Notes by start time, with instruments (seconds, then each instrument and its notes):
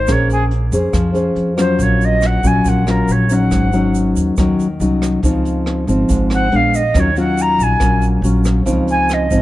Already playing: flute C5
0.07 upright bass A#1, nylon-string guitar A#3 C#4 G#4 C5, flute C#5, kick, cross-stick, closed hi-hat, shaker
0.29 flute G#4, closed hi-hat, shaker
0.51 closed hi-hat
0.72 upright bass F2, nylon-string guitar C#4 G#4 C5, closed hi-hat, shaker
0.93 upright bass F2, nylon-string guitar F3, kick, cross-stick, closed hi-hat, shaker
1.14 nylon-string guitar C#4 G#4 C5, closed hi-hat, shaker
1.36 upright bass F2, closed hi-hat
1.57 nylon-string guitar F#3 C#4 F4, flute C5, cross-stick, closed hi-hat, shaker
1.79 upright bass A#1, nylon-string guitar A#2, flute C#5, kick, closed hi-hat, shaker
2.01 flute D#5, closed hi-hat, shaker
2.21 cross-stick, closed hi-hat, shaker
2.26 flute F#5
2.43 upright bass A#1, nylon-string guitar F#3 C#4 F4, flute G#5, kick, closed hi-hat, shaker
2.65 upright bass A#1, nylon-string guitar A#2, flute F#5, kick, closed hi-hat, shaker
2.87 nylon-string guitar F#3 C#4 F4, flute A#4, cross-stick, closed hi-hat, shaker
3.08 upright bass A#1, flute C#5, closed hi-hat, shaker
3.30 nylon-string guitar F#3 C#4 D#4, flute F#5, closed hi-hat, shaker
3.51 upright bass G#1, nylon-string guitar G#2, kick, cross-stick, closed hi-hat, shaker
3.72 nylon-string guitar F#3 C#4 D#4, closed hi-hat, shaker
3.94 closed hi-hat, shaker
4.16 upright bass D#2, closed hi-hat, shaker
4.37 upright bass D#2, nylon-string guitar D#3 F#3 C#4 D#4, kick, cross-stick, closed hi-hat, shaker
4.59 closed hi-hat, shaker
4.80 upright bass C2, nylon-string guitar F#3 C#4 D#4, closed hi-hat, shaker
5.02 cross-stick, closed hi-hat, shaker
5.23 upright bass C#2, nylon-string guitar C#3 F3 C4 D#4, kick, closed hi-hat, shaker
5.45 closed hi-hat, shaker
5.66 cross-stick, closed hi-hat
5.87 upright bass G#1, nylon-string guitar F3 C4 D#4, closed hi-hat, shaker
6.09 upright bass G#1, nylon-string guitar G#2, kick, closed hi-hat, shaker
6.30 flute F#5, cross-stick, closed hi-hat, shaker
6.52 upright bass A#1, nylon-string guitar G#3 B3 D4, flute F5, closed hi-hat
6.74 flute D#5, closed hi-hat, shaker
6.94 upright bass D#2, nylon-string guitar D#3 F#3 C#4 F4, kick, cross-stick, closed hi-hat, shaker
6.99 flute C#5
7.16 nylon-string guitar F#3 C#4 F4, flute F#5, closed hi-hat, shaker
7.37 flute A#5, closed hi-hat, shaker
7.59 upright bass A#1, flute G#5, closed hi-hat, shaker
7.80 upright bass A#1, nylon-string guitar A#2 F#3 C#4 F4, kick, cross-stick, closed hi-hat, shaker
8.02 closed hi-hat, shaker
8.22 upright bass A#1, nylon-string guitar F#3 C#4 F4, closed hi-hat, shaker
8.44 cross-stick, closed hi-hat, shaker
8.66 upright bass C#2, nylon-string guitar C#3 F3 C4 D#4, kick, closed hi-hat, shaker
8.88 flute G#5, closed hi-hat, shaker
9.09 cross-stick, closed hi-hat, shaker
9.13 flute D#5
9.31 upright bass G#1, nylon-string guitar F3 C4 D#4, kick, closed hi-hat, shaker